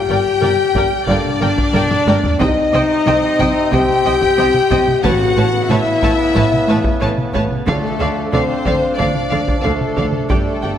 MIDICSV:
0, 0, Header, 1, 10, 480
1, 0, Start_track
1, 0, Tempo, 658617
1, 1750, Time_signature, 4, 2, 24, 8
1, 7857, End_track
2, 0, Start_track
2, 0, Title_t, "Violin section"
2, 0, Program_c, 0, 48
2, 79, Note_on_c, 0, 79, 65
2, 137, Note_off_c, 0, 79, 0
2, 323, Note_on_c, 0, 79, 68
2, 381, Note_off_c, 0, 79, 0
2, 564, Note_on_c, 0, 79, 68
2, 623, Note_off_c, 0, 79, 0
2, 804, Note_on_c, 0, 79, 74
2, 862, Note_off_c, 0, 79, 0
2, 1030, Note_on_c, 0, 79, 76
2, 1088, Note_off_c, 0, 79, 0
2, 1276, Note_on_c, 0, 79, 79
2, 1334, Note_off_c, 0, 79, 0
2, 1518, Note_on_c, 0, 79, 69
2, 1577, Note_off_c, 0, 79, 0
2, 1752, Note_on_c, 0, 79, 83
2, 1811, Note_off_c, 0, 79, 0
2, 1995, Note_on_c, 0, 79, 71
2, 2054, Note_off_c, 0, 79, 0
2, 2234, Note_on_c, 0, 79, 74
2, 2293, Note_off_c, 0, 79, 0
2, 2476, Note_on_c, 0, 79, 83
2, 2535, Note_off_c, 0, 79, 0
2, 2719, Note_on_c, 0, 79, 77
2, 2778, Note_off_c, 0, 79, 0
2, 2959, Note_on_c, 0, 79, 77
2, 3017, Note_off_c, 0, 79, 0
2, 3194, Note_on_c, 0, 79, 73
2, 3253, Note_off_c, 0, 79, 0
2, 3430, Note_on_c, 0, 79, 77
2, 3489, Note_off_c, 0, 79, 0
2, 3670, Note_on_c, 0, 81, 86
2, 3729, Note_off_c, 0, 81, 0
2, 3919, Note_on_c, 0, 81, 74
2, 3977, Note_off_c, 0, 81, 0
2, 4155, Note_on_c, 0, 81, 73
2, 4214, Note_off_c, 0, 81, 0
2, 4395, Note_on_c, 0, 81, 80
2, 4454, Note_off_c, 0, 81, 0
2, 4629, Note_on_c, 0, 81, 82
2, 4687, Note_off_c, 0, 81, 0
2, 4868, Note_on_c, 0, 81, 74
2, 4926, Note_off_c, 0, 81, 0
2, 5113, Note_on_c, 0, 81, 79
2, 5171, Note_off_c, 0, 81, 0
2, 5354, Note_on_c, 0, 81, 70
2, 5412, Note_off_c, 0, 81, 0
2, 5594, Note_on_c, 0, 77, 80
2, 5653, Note_off_c, 0, 77, 0
2, 5831, Note_on_c, 0, 77, 68
2, 5889, Note_off_c, 0, 77, 0
2, 6072, Note_on_c, 0, 77, 73
2, 6131, Note_off_c, 0, 77, 0
2, 6312, Note_on_c, 0, 77, 68
2, 6370, Note_off_c, 0, 77, 0
2, 6548, Note_on_c, 0, 77, 69
2, 6606, Note_off_c, 0, 77, 0
2, 6783, Note_on_c, 0, 77, 66
2, 6841, Note_off_c, 0, 77, 0
2, 7018, Note_on_c, 0, 77, 66
2, 7076, Note_off_c, 0, 77, 0
2, 7264, Note_on_c, 0, 77, 57
2, 7322, Note_off_c, 0, 77, 0
2, 7501, Note_on_c, 0, 79, 62
2, 7560, Note_off_c, 0, 79, 0
2, 7741, Note_on_c, 0, 79, 61
2, 7799, Note_off_c, 0, 79, 0
2, 7857, End_track
3, 0, Start_track
3, 0, Title_t, "Violin section"
3, 0, Program_c, 1, 48
3, 0, Note_on_c, 1, 79, 119
3, 764, Note_off_c, 1, 79, 0
3, 790, Note_on_c, 1, 74, 113
3, 1749, Note_on_c, 1, 75, 114
3, 1750, Note_off_c, 1, 74, 0
3, 2691, Note_off_c, 1, 75, 0
3, 2711, Note_on_c, 1, 79, 127
3, 3671, Note_off_c, 1, 79, 0
3, 3672, Note_on_c, 1, 78, 120
3, 4141, Note_off_c, 1, 78, 0
3, 4152, Note_on_c, 1, 76, 117
3, 5350, Note_off_c, 1, 76, 0
3, 5587, Note_on_c, 1, 69, 94
3, 6039, Note_off_c, 1, 69, 0
3, 6067, Note_on_c, 1, 72, 112
3, 6538, Note_off_c, 1, 72, 0
3, 6545, Note_on_c, 1, 74, 87
3, 7026, Note_off_c, 1, 74, 0
3, 7027, Note_on_c, 1, 69, 83
3, 7502, Note_off_c, 1, 69, 0
3, 7510, Note_on_c, 1, 69, 85
3, 7857, Note_off_c, 1, 69, 0
3, 7857, End_track
4, 0, Start_track
4, 0, Title_t, "Viola section"
4, 0, Program_c, 2, 48
4, 67, Note_on_c, 2, 74, 68
4, 71, Note_on_c, 2, 70, 66
4, 125, Note_off_c, 2, 74, 0
4, 129, Note_off_c, 2, 70, 0
4, 301, Note_on_c, 2, 70, 75
4, 301, Note_on_c, 2, 74, 73
4, 359, Note_off_c, 2, 70, 0
4, 360, Note_off_c, 2, 74, 0
4, 548, Note_on_c, 2, 74, 67
4, 549, Note_on_c, 2, 70, 69
4, 606, Note_off_c, 2, 74, 0
4, 607, Note_off_c, 2, 70, 0
4, 781, Note_on_c, 2, 74, 65
4, 783, Note_on_c, 2, 70, 63
4, 839, Note_off_c, 2, 74, 0
4, 841, Note_off_c, 2, 70, 0
4, 1023, Note_on_c, 2, 70, 70
4, 1024, Note_on_c, 2, 74, 72
4, 1081, Note_off_c, 2, 70, 0
4, 1082, Note_off_c, 2, 74, 0
4, 1266, Note_on_c, 2, 70, 70
4, 1266, Note_on_c, 2, 74, 68
4, 1324, Note_off_c, 2, 70, 0
4, 1324, Note_off_c, 2, 74, 0
4, 1508, Note_on_c, 2, 74, 78
4, 1509, Note_on_c, 2, 70, 77
4, 1567, Note_off_c, 2, 74, 0
4, 1568, Note_off_c, 2, 70, 0
4, 1741, Note_on_c, 2, 72, 76
4, 1743, Note_on_c, 2, 75, 72
4, 1799, Note_off_c, 2, 72, 0
4, 1802, Note_off_c, 2, 75, 0
4, 1991, Note_on_c, 2, 75, 75
4, 1992, Note_on_c, 2, 72, 81
4, 2049, Note_off_c, 2, 75, 0
4, 2051, Note_off_c, 2, 72, 0
4, 2233, Note_on_c, 2, 75, 81
4, 2234, Note_on_c, 2, 72, 78
4, 2291, Note_off_c, 2, 75, 0
4, 2292, Note_off_c, 2, 72, 0
4, 2473, Note_on_c, 2, 75, 75
4, 2475, Note_on_c, 2, 72, 70
4, 2532, Note_off_c, 2, 75, 0
4, 2534, Note_off_c, 2, 72, 0
4, 2709, Note_on_c, 2, 72, 73
4, 2709, Note_on_c, 2, 75, 77
4, 2767, Note_off_c, 2, 72, 0
4, 2767, Note_off_c, 2, 75, 0
4, 2954, Note_on_c, 2, 72, 73
4, 2954, Note_on_c, 2, 75, 75
4, 3013, Note_off_c, 2, 72, 0
4, 3013, Note_off_c, 2, 75, 0
4, 3194, Note_on_c, 2, 72, 72
4, 3195, Note_on_c, 2, 75, 69
4, 3252, Note_off_c, 2, 72, 0
4, 3254, Note_off_c, 2, 75, 0
4, 3432, Note_on_c, 2, 75, 83
4, 3433, Note_on_c, 2, 72, 79
4, 3490, Note_off_c, 2, 75, 0
4, 3491, Note_off_c, 2, 72, 0
4, 3668, Note_on_c, 2, 71, 81
4, 3668, Note_on_c, 2, 73, 80
4, 3726, Note_off_c, 2, 73, 0
4, 3727, Note_off_c, 2, 71, 0
4, 3908, Note_on_c, 2, 71, 72
4, 3909, Note_on_c, 2, 73, 70
4, 3967, Note_off_c, 2, 71, 0
4, 3967, Note_off_c, 2, 73, 0
4, 4151, Note_on_c, 2, 71, 84
4, 4152, Note_on_c, 2, 73, 82
4, 4210, Note_off_c, 2, 71, 0
4, 4210, Note_off_c, 2, 73, 0
4, 4384, Note_on_c, 2, 71, 73
4, 4388, Note_on_c, 2, 73, 76
4, 4442, Note_off_c, 2, 71, 0
4, 4446, Note_off_c, 2, 73, 0
4, 4624, Note_on_c, 2, 73, 67
4, 4628, Note_on_c, 2, 71, 73
4, 4682, Note_off_c, 2, 73, 0
4, 4686, Note_off_c, 2, 71, 0
4, 4870, Note_on_c, 2, 73, 72
4, 4872, Note_on_c, 2, 71, 77
4, 4928, Note_off_c, 2, 73, 0
4, 4930, Note_off_c, 2, 71, 0
4, 5101, Note_on_c, 2, 73, 73
4, 5107, Note_on_c, 2, 71, 67
4, 5160, Note_off_c, 2, 73, 0
4, 5166, Note_off_c, 2, 71, 0
4, 5345, Note_on_c, 2, 73, 75
4, 5348, Note_on_c, 2, 71, 77
4, 5404, Note_off_c, 2, 73, 0
4, 5406, Note_off_c, 2, 71, 0
4, 5587, Note_on_c, 2, 69, 77
4, 5587, Note_on_c, 2, 74, 74
4, 5645, Note_off_c, 2, 74, 0
4, 5646, Note_off_c, 2, 69, 0
4, 5823, Note_on_c, 2, 69, 76
4, 5823, Note_on_c, 2, 74, 75
4, 5881, Note_off_c, 2, 69, 0
4, 5881, Note_off_c, 2, 74, 0
4, 6069, Note_on_c, 2, 69, 75
4, 6069, Note_on_c, 2, 74, 73
4, 6127, Note_off_c, 2, 69, 0
4, 6127, Note_off_c, 2, 74, 0
4, 6302, Note_on_c, 2, 74, 62
4, 6305, Note_on_c, 2, 69, 69
4, 6361, Note_off_c, 2, 74, 0
4, 6364, Note_off_c, 2, 69, 0
4, 6542, Note_on_c, 2, 74, 67
4, 6543, Note_on_c, 2, 69, 61
4, 6601, Note_off_c, 2, 74, 0
4, 6602, Note_off_c, 2, 69, 0
4, 6786, Note_on_c, 2, 69, 64
4, 6788, Note_on_c, 2, 74, 66
4, 6844, Note_off_c, 2, 69, 0
4, 6846, Note_off_c, 2, 74, 0
4, 7023, Note_on_c, 2, 74, 63
4, 7025, Note_on_c, 2, 69, 65
4, 7081, Note_off_c, 2, 74, 0
4, 7083, Note_off_c, 2, 69, 0
4, 7261, Note_on_c, 2, 69, 64
4, 7263, Note_on_c, 2, 74, 66
4, 7320, Note_off_c, 2, 69, 0
4, 7321, Note_off_c, 2, 74, 0
4, 7501, Note_on_c, 2, 67, 70
4, 7502, Note_on_c, 2, 74, 63
4, 7559, Note_off_c, 2, 67, 0
4, 7560, Note_off_c, 2, 74, 0
4, 7747, Note_on_c, 2, 74, 57
4, 7751, Note_on_c, 2, 67, 55
4, 7806, Note_off_c, 2, 74, 0
4, 7809, Note_off_c, 2, 67, 0
4, 7857, End_track
5, 0, Start_track
5, 0, Title_t, "French horn section"
5, 0, Program_c, 3, 60
5, 0, Note_on_c, 3, 67, 121
5, 661, Note_off_c, 3, 67, 0
5, 784, Note_on_c, 3, 62, 127
5, 1728, Note_off_c, 3, 62, 0
5, 1748, Note_on_c, 3, 63, 124
5, 2690, Note_off_c, 3, 63, 0
5, 2717, Note_on_c, 3, 67, 127
5, 3667, Note_on_c, 3, 66, 126
5, 3674, Note_off_c, 3, 67, 0
5, 4139, Note_off_c, 3, 66, 0
5, 4144, Note_on_c, 3, 64, 123
5, 5346, Note_off_c, 3, 64, 0
5, 5587, Note_on_c, 3, 57, 111
5, 6039, Note_off_c, 3, 57, 0
5, 6056, Note_on_c, 3, 60, 113
5, 6532, Note_off_c, 3, 60, 0
5, 6533, Note_on_c, 3, 62, 95
5, 7014, Note_on_c, 3, 57, 99
5, 7020, Note_off_c, 3, 62, 0
5, 7486, Note_off_c, 3, 57, 0
5, 7495, Note_on_c, 3, 57, 94
5, 7857, Note_off_c, 3, 57, 0
5, 7857, End_track
6, 0, Start_track
6, 0, Title_t, "Trombone section"
6, 0, Program_c, 4, 61
6, 779, Note_on_c, 4, 58, 84
6, 781, Note_on_c, 4, 50, 85
6, 950, Note_off_c, 4, 58, 0
6, 951, Note_off_c, 4, 50, 0
6, 1748, Note_on_c, 4, 48, 81
6, 1748, Note_on_c, 4, 60, 79
6, 3640, Note_off_c, 4, 48, 0
6, 3640, Note_off_c, 4, 60, 0
6, 3670, Note_on_c, 4, 49, 85
6, 3672, Note_on_c, 4, 59, 82
6, 5560, Note_off_c, 4, 49, 0
6, 5561, Note_off_c, 4, 59, 0
6, 5576, Note_on_c, 4, 53, 83
6, 5579, Note_on_c, 4, 62, 78
6, 7472, Note_off_c, 4, 53, 0
6, 7511, Note_on_c, 4, 55, 66
6, 7857, Note_off_c, 4, 55, 0
6, 7857, Note_off_c, 4, 62, 0
6, 7857, End_track
7, 0, Start_track
7, 0, Title_t, "Timpani"
7, 0, Program_c, 5, 47
7, 3671, Note_on_c, 5, 45, 86
7, 4361, Note_off_c, 5, 45, 0
7, 5589, Note_on_c, 5, 50, 85
7, 6279, Note_off_c, 5, 50, 0
7, 7857, End_track
8, 0, Start_track
8, 0, Title_t, "Cello section"
8, 0, Program_c, 6, 48
8, 62, Note_on_c, 6, 43, 75
8, 120, Note_off_c, 6, 43, 0
8, 301, Note_on_c, 6, 43, 81
8, 359, Note_off_c, 6, 43, 0
8, 542, Note_on_c, 6, 43, 80
8, 600, Note_off_c, 6, 43, 0
8, 786, Note_on_c, 6, 43, 89
8, 844, Note_off_c, 6, 43, 0
8, 1027, Note_on_c, 6, 43, 80
8, 1085, Note_off_c, 6, 43, 0
8, 1263, Note_on_c, 6, 43, 81
8, 1321, Note_off_c, 6, 43, 0
8, 1504, Note_on_c, 6, 43, 87
8, 1563, Note_off_c, 6, 43, 0
8, 1740, Note_on_c, 6, 48, 94
8, 1798, Note_off_c, 6, 48, 0
8, 1986, Note_on_c, 6, 48, 81
8, 2044, Note_off_c, 6, 48, 0
8, 2228, Note_on_c, 6, 48, 88
8, 2286, Note_off_c, 6, 48, 0
8, 2470, Note_on_c, 6, 48, 82
8, 2528, Note_off_c, 6, 48, 0
8, 2709, Note_on_c, 6, 48, 99
8, 2767, Note_off_c, 6, 48, 0
8, 2947, Note_on_c, 6, 48, 79
8, 3005, Note_off_c, 6, 48, 0
8, 3186, Note_on_c, 6, 48, 96
8, 3245, Note_off_c, 6, 48, 0
8, 3426, Note_on_c, 6, 48, 93
8, 3485, Note_off_c, 6, 48, 0
8, 3668, Note_on_c, 6, 45, 88
8, 3726, Note_off_c, 6, 45, 0
8, 3911, Note_on_c, 6, 45, 81
8, 3969, Note_off_c, 6, 45, 0
8, 4152, Note_on_c, 6, 45, 94
8, 4210, Note_off_c, 6, 45, 0
8, 4391, Note_on_c, 6, 45, 75
8, 4449, Note_off_c, 6, 45, 0
8, 4630, Note_on_c, 6, 45, 102
8, 4689, Note_off_c, 6, 45, 0
8, 4869, Note_on_c, 6, 45, 80
8, 4927, Note_off_c, 6, 45, 0
8, 5110, Note_on_c, 6, 45, 95
8, 5169, Note_off_c, 6, 45, 0
8, 5351, Note_on_c, 6, 45, 78
8, 5409, Note_off_c, 6, 45, 0
8, 5587, Note_on_c, 6, 50, 90
8, 5646, Note_off_c, 6, 50, 0
8, 5827, Note_on_c, 6, 50, 81
8, 5885, Note_off_c, 6, 50, 0
8, 6068, Note_on_c, 6, 50, 82
8, 6126, Note_off_c, 6, 50, 0
8, 6310, Note_on_c, 6, 50, 75
8, 6368, Note_off_c, 6, 50, 0
8, 6548, Note_on_c, 6, 50, 80
8, 6606, Note_off_c, 6, 50, 0
8, 6783, Note_on_c, 6, 50, 67
8, 6842, Note_off_c, 6, 50, 0
8, 7024, Note_on_c, 6, 50, 79
8, 7082, Note_off_c, 6, 50, 0
8, 7264, Note_on_c, 6, 50, 71
8, 7322, Note_off_c, 6, 50, 0
8, 7502, Note_on_c, 6, 43, 75
8, 7561, Note_off_c, 6, 43, 0
8, 7749, Note_on_c, 6, 43, 63
8, 7807, Note_off_c, 6, 43, 0
8, 7857, End_track
9, 0, Start_track
9, 0, Title_t, "Double bass section"
9, 0, Program_c, 7, 48
9, 67, Note_on_c, 7, 31, 76
9, 126, Note_off_c, 7, 31, 0
9, 303, Note_on_c, 7, 31, 78
9, 361, Note_off_c, 7, 31, 0
9, 550, Note_on_c, 7, 31, 73
9, 608, Note_off_c, 7, 31, 0
9, 788, Note_on_c, 7, 31, 87
9, 846, Note_off_c, 7, 31, 0
9, 1028, Note_on_c, 7, 31, 81
9, 1086, Note_off_c, 7, 31, 0
9, 1267, Note_on_c, 7, 31, 82
9, 1325, Note_off_c, 7, 31, 0
9, 1509, Note_on_c, 7, 31, 89
9, 1568, Note_off_c, 7, 31, 0
9, 1750, Note_on_c, 7, 36, 90
9, 1808, Note_off_c, 7, 36, 0
9, 1990, Note_on_c, 7, 36, 75
9, 2049, Note_off_c, 7, 36, 0
9, 2232, Note_on_c, 7, 36, 90
9, 2291, Note_off_c, 7, 36, 0
9, 2474, Note_on_c, 7, 36, 73
9, 2532, Note_off_c, 7, 36, 0
9, 2714, Note_on_c, 7, 36, 94
9, 2772, Note_off_c, 7, 36, 0
9, 2954, Note_on_c, 7, 36, 88
9, 3012, Note_off_c, 7, 36, 0
9, 3191, Note_on_c, 7, 36, 85
9, 3250, Note_off_c, 7, 36, 0
9, 3433, Note_on_c, 7, 36, 89
9, 3492, Note_off_c, 7, 36, 0
9, 3669, Note_on_c, 7, 33, 96
9, 3728, Note_off_c, 7, 33, 0
9, 3911, Note_on_c, 7, 33, 89
9, 3969, Note_off_c, 7, 33, 0
9, 4148, Note_on_c, 7, 33, 87
9, 4207, Note_off_c, 7, 33, 0
9, 4391, Note_on_c, 7, 33, 74
9, 4450, Note_off_c, 7, 33, 0
9, 4631, Note_on_c, 7, 33, 90
9, 4690, Note_off_c, 7, 33, 0
9, 4874, Note_on_c, 7, 33, 87
9, 4932, Note_off_c, 7, 33, 0
9, 5113, Note_on_c, 7, 33, 88
9, 5171, Note_off_c, 7, 33, 0
9, 5350, Note_on_c, 7, 33, 86
9, 5408, Note_off_c, 7, 33, 0
9, 5589, Note_on_c, 7, 38, 82
9, 5648, Note_off_c, 7, 38, 0
9, 5830, Note_on_c, 7, 38, 79
9, 5888, Note_off_c, 7, 38, 0
9, 6070, Note_on_c, 7, 38, 82
9, 6129, Note_off_c, 7, 38, 0
9, 6309, Note_on_c, 7, 38, 65
9, 6367, Note_off_c, 7, 38, 0
9, 6549, Note_on_c, 7, 38, 81
9, 6607, Note_off_c, 7, 38, 0
9, 6786, Note_on_c, 7, 38, 68
9, 6844, Note_off_c, 7, 38, 0
9, 7027, Note_on_c, 7, 38, 74
9, 7085, Note_off_c, 7, 38, 0
9, 7269, Note_on_c, 7, 38, 70
9, 7327, Note_off_c, 7, 38, 0
9, 7507, Note_on_c, 7, 31, 73
9, 7565, Note_off_c, 7, 31, 0
9, 7750, Note_on_c, 7, 31, 62
9, 7809, Note_off_c, 7, 31, 0
9, 7857, End_track
10, 0, Start_track
10, 0, Title_t, "Taiko and cinematic ensemble drums"
10, 304, Note_on_c, 9, 47, 65
10, 377, Note_off_c, 9, 47, 0
10, 546, Note_on_c, 9, 41, 89
10, 619, Note_off_c, 9, 41, 0
10, 788, Note_on_c, 9, 41, 78
10, 861, Note_off_c, 9, 41, 0
10, 912, Note_on_c, 9, 47, 52
10, 985, Note_off_c, 9, 47, 0
10, 1152, Note_on_c, 9, 41, 91
10, 1225, Note_off_c, 9, 41, 0
10, 1270, Note_on_c, 9, 47, 93
10, 1343, Note_off_c, 9, 47, 0
10, 1393, Note_on_c, 9, 45, 95
10, 1466, Note_off_c, 9, 45, 0
10, 1514, Note_on_c, 9, 48, 104
10, 1587, Note_off_c, 9, 48, 0
10, 1634, Note_on_c, 9, 43, 105
10, 1707, Note_off_c, 9, 43, 0
10, 1756, Note_on_c, 9, 41, 103
10, 1828, Note_off_c, 9, 41, 0
10, 2233, Note_on_c, 9, 47, 66
10, 2305, Note_off_c, 9, 47, 0
10, 2473, Note_on_c, 9, 41, 93
10, 2545, Note_off_c, 9, 41, 0
10, 2709, Note_on_c, 9, 41, 76
10, 2782, Note_off_c, 9, 41, 0
10, 2829, Note_on_c, 9, 47, 53
10, 2902, Note_off_c, 9, 47, 0
10, 3070, Note_on_c, 9, 41, 82
10, 3142, Note_off_c, 9, 41, 0
10, 3310, Note_on_c, 9, 47, 51
10, 3383, Note_off_c, 9, 47, 0
10, 3432, Note_on_c, 9, 41, 87
10, 3505, Note_off_c, 9, 41, 0
10, 3553, Note_on_c, 9, 47, 61
10, 3626, Note_off_c, 9, 47, 0
10, 3673, Note_on_c, 9, 41, 96
10, 3746, Note_off_c, 9, 41, 0
10, 4153, Note_on_c, 9, 47, 69
10, 4226, Note_off_c, 9, 47, 0
10, 4392, Note_on_c, 9, 41, 92
10, 4465, Note_off_c, 9, 41, 0
10, 4633, Note_on_c, 9, 41, 83
10, 4706, Note_off_c, 9, 41, 0
10, 4751, Note_on_c, 9, 47, 55
10, 4824, Note_off_c, 9, 47, 0
10, 4989, Note_on_c, 9, 41, 88
10, 5062, Note_off_c, 9, 41, 0
10, 5233, Note_on_c, 9, 47, 57
10, 5306, Note_off_c, 9, 47, 0
10, 5353, Note_on_c, 9, 41, 88
10, 5426, Note_off_c, 9, 41, 0
10, 5476, Note_on_c, 9, 47, 56
10, 5548, Note_off_c, 9, 47, 0
10, 5594, Note_on_c, 9, 41, 106
10, 5667, Note_off_c, 9, 41, 0
10, 6071, Note_on_c, 9, 47, 63
10, 6144, Note_off_c, 9, 47, 0
10, 6310, Note_on_c, 9, 41, 89
10, 6383, Note_off_c, 9, 41, 0
10, 6550, Note_on_c, 9, 41, 85
10, 6623, Note_off_c, 9, 41, 0
10, 6672, Note_on_c, 9, 47, 53
10, 6744, Note_off_c, 9, 47, 0
10, 6912, Note_on_c, 9, 41, 81
10, 6985, Note_off_c, 9, 41, 0
10, 7150, Note_on_c, 9, 47, 54
10, 7223, Note_off_c, 9, 47, 0
10, 7269, Note_on_c, 9, 41, 79
10, 7342, Note_off_c, 9, 41, 0
10, 7387, Note_on_c, 9, 47, 59
10, 7460, Note_off_c, 9, 47, 0
10, 7508, Note_on_c, 9, 41, 101
10, 7581, Note_off_c, 9, 41, 0
10, 7857, End_track
0, 0, End_of_file